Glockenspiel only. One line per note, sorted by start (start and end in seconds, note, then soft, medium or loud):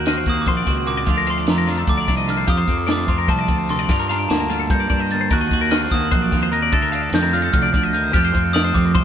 0.08 0.28 F6 medium
0.30 0.41 D#6 medium
0.42 0.48 D6 medium
0.49 0.90 C6 medium
0.87 1.29 D6 medium
1.30 1.39 C6 medium
1.50 1.91 A#5 medium
1.89 2.26 D6 medium
2.30 2.50 F6 medium
2.50 2.87 D#6 medium
2.91 3.09 D6 medium
3.09 3.18 C6 medium
3.30 3.71 A5 medium
3.70 4.08 C6 medium
4.11 4.31 A#5 medium
4.29 4.71 A5 medium
4.71 5.08 G6 medium
5.12 5.32 A6 medium
5.33 5.74 F#6 medium
5.71 5.90 F6 medium
5.92 6.11 D#6 medium
6.12 6.54 F#6 medium
6.53 6.74 A#6 medium
6.73 7.15 A6 medium
7.15 7.35 G6 medium
7.33 7.52 F6 medium
7.53 7.95 F6 loud
7.93 8.15 G6 medium
8.14 8.56 F6 loud
8.53 8.73 D#6 medium
8.74 8.96 D6 medium
8.95 9.04 C6 medium